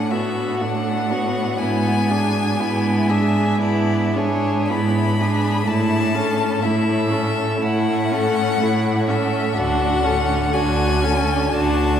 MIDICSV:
0, 0, Header, 1, 5, 480
1, 0, Start_track
1, 0, Key_signature, 3, "major"
1, 0, Tempo, 1000000
1, 763, Time_signature, 4, 2, 24, 8
1, 1730, Tempo, 1092896
1, 2210, Tempo, 977199
1, 5797, End_track
2, 0, Start_track
2, 0, Title_t, "Violin"
2, 0, Program_c, 0, 40
2, 0, Note_on_c, 0, 78, 49
2, 52, Note_on_c, 0, 76, 47
2, 59, Note_off_c, 0, 78, 0
2, 288, Note_off_c, 0, 76, 0
2, 290, Note_on_c, 0, 78, 51
2, 759, Note_on_c, 0, 80, 56
2, 766, Note_off_c, 0, 78, 0
2, 1484, Note_on_c, 0, 76, 51
2, 1491, Note_off_c, 0, 80, 0
2, 1731, Note_off_c, 0, 76, 0
2, 1734, Note_on_c, 0, 74, 47
2, 1973, Note_on_c, 0, 73, 48
2, 1980, Note_off_c, 0, 74, 0
2, 2203, Note_off_c, 0, 73, 0
2, 2205, Note_on_c, 0, 83, 57
2, 2691, Note_on_c, 0, 81, 64
2, 2698, Note_off_c, 0, 83, 0
2, 3157, Note_on_c, 0, 76, 58
2, 3164, Note_off_c, 0, 81, 0
2, 3647, Note_on_c, 0, 78, 63
2, 3655, Note_off_c, 0, 76, 0
2, 4366, Note_off_c, 0, 78, 0
2, 4369, Note_on_c, 0, 76, 57
2, 4604, Note_on_c, 0, 78, 66
2, 4612, Note_off_c, 0, 76, 0
2, 5076, Note_on_c, 0, 80, 68
2, 5084, Note_off_c, 0, 78, 0
2, 5564, Note_on_c, 0, 81, 64
2, 5571, Note_off_c, 0, 80, 0
2, 5797, Note_off_c, 0, 81, 0
2, 5797, End_track
3, 0, Start_track
3, 0, Title_t, "Violin"
3, 0, Program_c, 1, 40
3, 0, Note_on_c, 1, 62, 32
3, 54, Note_on_c, 1, 66, 30
3, 61, Note_off_c, 1, 62, 0
3, 296, Note_on_c, 1, 62, 33
3, 303, Note_off_c, 1, 66, 0
3, 530, Note_on_c, 1, 66, 33
3, 537, Note_off_c, 1, 62, 0
3, 763, Note_off_c, 1, 66, 0
3, 766, Note_on_c, 1, 64, 35
3, 1009, Note_on_c, 1, 68, 30
3, 1016, Note_off_c, 1, 64, 0
3, 1248, Note_on_c, 1, 64, 32
3, 1255, Note_off_c, 1, 68, 0
3, 1490, Note_on_c, 1, 68, 34
3, 1497, Note_off_c, 1, 64, 0
3, 1728, Note_off_c, 1, 68, 0
3, 1731, Note_on_c, 1, 64, 36
3, 1981, Note_on_c, 1, 68, 31
3, 1987, Note_off_c, 1, 64, 0
3, 2212, Note_on_c, 1, 64, 36
3, 2220, Note_off_c, 1, 68, 0
3, 2461, Note_on_c, 1, 68, 34
3, 2468, Note_off_c, 1, 64, 0
3, 2688, Note_off_c, 1, 68, 0
3, 2691, Note_on_c, 1, 64, 37
3, 2927, Note_on_c, 1, 69, 32
3, 2934, Note_off_c, 1, 64, 0
3, 3170, Note_on_c, 1, 64, 35
3, 3178, Note_off_c, 1, 69, 0
3, 3406, Note_on_c, 1, 69, 35
3, 3413, Note_off_c, 1, 64, 0
3, 3636, Note_off_c, 1, 69, 0
3, 3639, Note_on_c, 1, 64, 40
3, 3896, Note_on_c, 1, 69, 39
3, 3904, Note_off_c, 1, 64, 0
3, 4144, Note_on_c, 1, 64, 41
3, 4152, Note_off_c, 1, 69, 0
3, 4375, Note_on_c, 1, 69, 36
3, 4382, Note_off_c, 1, 64, 0
3, 4604, Note_off_c, 1, 69, 0
3, 4607, Note_on_c, 1, 66, 44
3, 4850, Note_on_c, 1, 69, 39
3, 4857, Note_off_c, 1, 66, 0
3, 5079, Note_on_c, 1, 66, 40
3, 5087, Note_off_c, 1, 69, 0
3, 5326, Note_on_c, 1, 69, 41
3, 5334, Note_off_c, 1, 66, 0
3, 5564, Note_off_c, 1, 69, 0
3, 5567, Note_on_c, 1, 66, 42
3, 5797, Note_off_c, 1, 66, 0
3, 5797, End_track
4, 0, Start_track
4, 0, Title_t, "Viola"
4, 0, Program_c, 2, 41
4, 0, Note_on_c, 2, 57, 32
4, 61, Note_on_c, 2, 59, 28
4, 69, Note_off_c, 2, 57, 0
4, 295, Note_on_c, 2, 57, 31
4, 303, Note_off_c, 2, 59, 0
4, 532, Note_on_c, 2, 59, 31
4, 539, Note_off_c, 2, 57, 0
4, 766, Note_off_c, 2, 59, 0
4, 770, Note_on_c, 2, 59, 36
4, 1013, Note_on_c, 2, 62, 31
4, 1020, Note_off_c, 2, 59, 0
4, 1249, Note_on_c, 2, 59, 34
4, 1256, Note_off_c, 2, 62, 0
4, 1488, Note_on_c, 2, 62, 33
4, 1495, Note_off_c, 2, 59, 0
4, 1731, Note_off_c, 2, 62, 0
4, 1733, Note_on_c, 2, 59, 33
4, 1970, Note_on_c, 2, 62, 30
4, 1977, Note_off_c, 2, 59, 0
4, 2211, Note_on_c, 2, 59, 35
4, 2218, Note_off_c, 2, 62, 0
4, 2459, Note_on_c, 2, 62, 35
4, 2467, Note_off_c, 2, 59, 0
4, 2681, Note_off_c, 2, 62, 0
4, 2684, Note_on_c, 2, 57, 37
4, 2922, Note_on_c, 2, 61, 33
4, 2929, Note_off_c, 2, 57, 0
4, 3156, Note_on_c, 2, 57, 37
4, 3164, Note_off_c, 2, 61, 0
4, 3391, Note_on_c, 2, 61, 34
4, 3399, Note_off_c, 2, 57, 0
4, 3637, Note_off_c, 2, 61, 0
4, 3640, Note_on_c, 2, 57, 37
4, 3888, Note_on_c, 2, 61, 35
4, 3896, Note_off_c, 2, 57, 0
4, 4127, Note_on_c, 2, 57, 39
4, 4134, Note_off_c, 2, 61, 0
4, 4360, Note_on_c, 2, 61, 35
4, 4368, Note_off_c, 2, 57, 0
4, 4595, Note_off_c, 2, 61, 0
4, 4598, Note_on_c, 2, 62, 42
4, 4834, Note_on_c, 2, 61, 36
4, 4841, Note_off_c, 2, 62, 0
4, 5074, Note_on_c, 2, 62, 41
4, 5081, Note_off_c, 2, 61, 0
4, 5312, Note_on_c, 2, 61, 38
4, 5320, Note_off_c, 2, 62, 0
4, 5555, Note_off_c, 2, 61, 0
4, 5558, Note_on_c, 2, 62, 37
4, 5797, Note_off_c, 2, 62, 0
4, 5797, End_track
5, 0, Start_track
5, 0, Title_t, "Cello"
5, 0, Program_c, 3, 42
5, 0, Note_on_c, 3, 45, 38
5, 237, Note_off_c, 3, 45, 0
5, 294, Note_on_c, 3, 45, 41
5, 709, Note_off_c, 3, 45, 0
5, 770, Note_on_c, 3, 44, 41
5, 1188, Note_off_c, 3, 44, 0
5, 1246, Note_on_c, 3, 44, 42
5, 1674, Note_off_c, 3, 44, 0
5, 1734, Note_on_c, 3, 44, 41
5, 2157, Note_off_c, 3, 44, 0
5, 2212, Note_on_c, 3, 44, 45
5, 2634, Note_off_c, 3, 44, 0
5, 2690, Note_on_c, 3, 45, 46
5, 3105, Note_off_c, 3, 45, 0
5, 3160, Note_on_c, 3, 45, 46
5, 3587, Note_off_c, 3, 45, 0
5, 3650, Note_on_c, 3, 45, 46
5, 4078, Note_off_c, 3, 45, 0
5, 4134, Note_on_c, 3, 45, 46
5, 4550, Note_off_c, 3, 45, 0
5, 4604, Note_on_c, 3, 38, 49
5, 5024, Note_off_c, 3, 38, 0
5, 5086, Note_on_c, 3, 38, 52
5, 5511, Note_off_c, 3, 38, 0
5, 5570, Note_on_c, 3, 38, 51
5, 5797, Note_off_c, 3, 38, 0
5, 5797, End_track
0, 0, End_of_file